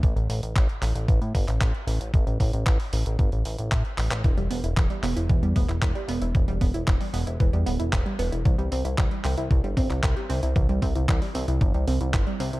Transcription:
<<
  \new Staff \with { instrumentName = "Synth arpeggio sound" } { \time 4/4 \key e \minor \tempo 4 = 114 r1 | r1 | e16 g16 b16 e'16 e16 g16 b16 e'16 e16 g16 b16 e'16 e16 g16 b16 e'16 | e16 g16 b16 e'16 e16 g16 b16 e'16 e16 g16 b16 e'16 e16 g16 b16 e'16 |
e16 g16 c'16 e'16 e16 g16 c'16 e'16 e16 g16 c'16 e'16 e16 g16 c'16 e'16 | e16 g16 c'16 e'16 e16 g16 c'16 e'16 e16 g16 c'16 e'16 e16 g16 c'16 e'16 | }
  \new Staff \with { instrumentName = "Analog synth bass" } { \clef bass \time 4/4 \key e \minor a,,16 a,,16 a,,16 a,,16 a,,16 r16 a,,16 a,,16 a,,16 a,16 g,,16 a,,16 a,,16 r16 a,,16 a,,16 | a,,16 a,,16 a,,16 a,,16 a,,16 r16 a,,16 a,,16 g,,16 a,,16 a,,16 a,,16 a,16 r16 a,,16 a,,16 | e,,16 e,,16 e,,16 e,,16 e,,16 r16 e,,16 e,,16 e,,16 e,16 d,,16 e,,16 e,,16 r16 e,,16 e,,16 | e,,16 e,,16 e,,16 e,,16 e,,16 r16 e,,16 e,,16 e,,16 e,16 d,,16 e,,16 e,,16 r16 e,,16 e,,16 |
c,16 c,16 c,16 c,16 c,16 r16 c,16 c,16 c,16 g,,16 g,,16 c,16 c,16 r16 c,16 c,16 | c,16 c,16 c,16 c,16 c,16 r16 c,16 c,16 g,,16 c,16 c,16 c,16 g,,16 r16 c,16 c,16 | }
  \new DrumStaff \with { instrumentName = "Drums" } \drummode { \time 4/4 <hh bd>16 hh16 hho16 hh16 <hc hh bd>16 hh16 <hc hho>16 hh16 <hh bd>16 hh16 <hho bd>16 <hc hh>16 <hc hh bd>16 hh16 hho16 hh16 | <hh bd>16 hh16 <hho bd>16 hh16 <hc hh bd>16 hho16 hho16 hh16 <hh bd>16 hh16 hho16 hh16 <hc hh bd>16 hh16 <hc hho>16 hc16 | <hh bd>16 hh16 hho16 hh16 <hc hh bd>16 hh16 <hc hho>16 hh16 <hh bd>16 hh16 <hho bd>16 <hc hh>16 <hc hh bd>16 hh16 hho16 hh16 | <hh bd>16 hh16 <hho bd>16 hh16 <hc hh bd>16 hho16 hho16 hh16 <hh bd>16 hh16 hho16 hh16 <hc hh bd>16 hh16 hho16 hh16 |
<hh bd>16 hh16 hho16 hh16 <hc hh bd>16 hh16 <hc hho>16 hh16 <hh bd>16 hh16 <hho bd>16 <hc hh>16 <hc hh bd>16 hh16 hho16 hh16 | <hh bd>16 hh16 <hho bd>16 hh16 <hc hh bd>16 hho16 hho16 hh16 <hh bd>16 hh16 hho16 hh16 <hc hh bd>16 hh16 hho16 hh16 | }
>>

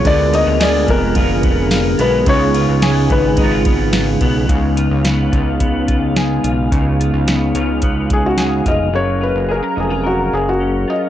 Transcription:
<<
  \new Staff \with { instrumentName = "Felt piano" } { \time 4/4 \key cis \mixolydian \tempo 4 = 108 d''8 dis''8 d''8 ais'2 b'8 | cis''4. b'2 r8 | r1 | r2 r8 gis'16 fis'8. dis''8 |
cis''8 b'8 ais'8 gis'8 fis'8 gis'16 fis'8. dis''8 | }
  \new Staff \with { instrumentName = "Clean electric guitar" } { \time 4/4 \key cis \mixolydian d8 dis'16 eis'16 gis'8 b8 eis'8 b8 eis'8 b8 | cis8 eis'8 gis'8 b8 dis'16 eis'16 b8 eis'8 b8 | cis8 eis'8 b8 eis'8 b8 eis'8 gis'8 eis'8 | cis8 eis'8 b8 eis'8 b4 gis'8 eis'8 |
fis8 eis'8 gis'16 ais'16 dis'16 eis'16 ais'4 cis'8 eis'8 | }
  \new Staff \with { instrumentName = "Tonewheel organ" } { \time 4/4 \key cis \mixolydian <d gis' ais'>1 | <cis dis'>1 | <cis dis' eis''>1~ | <cis dis' eis''>1 |
<fis gis' ais'>1 | }
  \new Staff \with { instrumentName = "Tonewheel organ" } { \time 4/4 \key cis \mixolydian <gis b>1~ | <gis b>1 | <gis b>1~ | <gis b>1 |
<cis' eis''>1 | }
  \new Staff \with { instrumentName = "Clean electric guitar" } { \time 4/4 \key cis \mixolydian <d gis b eis'>4 <d gis b eis'>4 <d gis b eis'>4. <gis b eis'>8 | <cis gis b eis'>4 <cis gis b eis'>4 <cis gis b eis'>2 | r1 | r1 |
r1 | }
  \new Staff \with { instrumentName = "Analog synth bass" } { \clef bass \time 4/4 \key cis \mixolydian d,8. d,8. eis,,2 b,,8 | cis,8. cis,8. gis,,2 b,,8 | cis,8. cis,8. cis,2 b,,8 | cis,8. cis,8. cis,2 eis,,8 |
fis,,8. fis,,8 r16 eis,,4 fis,,4 r8 | }
  \new DrumStaff \with { instrumentName = "Drums" } \drummode { \time 4/4 <bd cymr>8 cymr8 <cymr sn tamb>8 <bd cymr>8 <bd cymr>8 <bd cymr>8 <cymr sn tamb>8 cymr8 | <bd cymr>8 cymr8 <cymr sn tamb>8 <bd cymr>8 <bd cymr>8 <bd cymr>8 <cymr sn tamb>8 <bd cymr>8 | <hh bd>8 hh8 <hh sn>8 <hh bd>8 <hh bd>8 <hh bd>8 <hh sn>8 hh8 | <hh bd>8 hh8 <hh sn>8 hh8 <hh bd>8 <hh bd>8 <hh sn>8 <hh bd>8 |
r4 r4 r4 r4 | }
>>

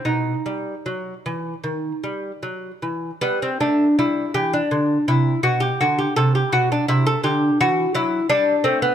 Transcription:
<<
  \new Staff \with { instrumentName = "Lute" } { \time 4/4 \key b \phrygian \tempo 4 = 82 dis'2.~ dis'8 r8 | b16 c'16 d'8 e'8 g'16 d'8. e'8 fis'16 g'16 fis'16 g'16 | a'16 g'16 fis'16 d'16 e'16 a'16 g'8 fis'8 e'8 d'8 c'16 b16 | }
  \new Staff \with { instrumentName = "Lute" } { \clef bass \time 4/4 \key b \phrygian b,8 g8 fis8 e8 dis8 g8 fis8 e8 | g8 a8 g8 e8 d8 c8 b,8 d8 | c8 b,8 c8 d8 e8 fis8 g8 a8 | }
>>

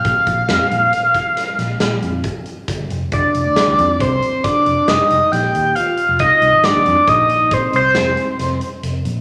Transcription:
<<
  \new Staff \with { instrumentName = "Analog synth lead" } { \time 7/4 \key bes \mixolydian \tempo 4 = 136 f''1. r4 | d''2 c''4 d''4 ees''4 g''4 f''4 | ees''4 d''4 ees''4 c''8 c''2 r4. | }
  \new Staff \with { instrumentName = "Vibraphone" } { \time 7/4 \key bes \mixolydian r1. r4 | d'2 c'4 d'4 r4 g'4 f'4 | ees'4 d'4 ees'4 c'8 c'2 r4. | }
  \new Staff \with { instrumentName = "Fingered electric bass" } { \clef bass \time 7/4 \key bes \mixolydian bes,,16 r16 bes,,8 f,16 r16 bes,,8 r4. bes,,8 bes,,8 f,8 r4 g,,8 f,,8 | f,,16 r16 f,,16 d,16 r16 d,16 f,8 c,8 r4 f,,16 r16 f,,16 r16 f,,16 r16 bes,,8 ees,8 r8. f,,16 | c,16 r16 c,16 aes,,8 ees,16 f,16 r16 bes,,4. c,8 f,,8 r8 f,,8 r8 f,,8 bes,,8 | }
  \new DrumStaff \with { instrumentName = "Drums" } \drummode { \time 7/4 <hh bd>8 <hh bd>8 <hh sn>8 hh8 hh8 <hh bd>8 <hh sn>8 <hh sn>8 <hh sn>8 hh8 <hh bd>8 hh8 <hh bd sn>8 hh8 | <hh bd>8 hh8 <hh sn>8 hh8 <hh bd>8 hh8 <hh bd>8 hh8 <hh sn>8 hh8 <hh sn>8 hh8 hh8 hh8 | <hh bd>8 hh8 <hh sn>8 hh8 <hh bd>8 hh8 <hh bd>8 hh8 <hh sn>8 hh8 <hh sn>8 hh8 hh8 hh8 | }
>>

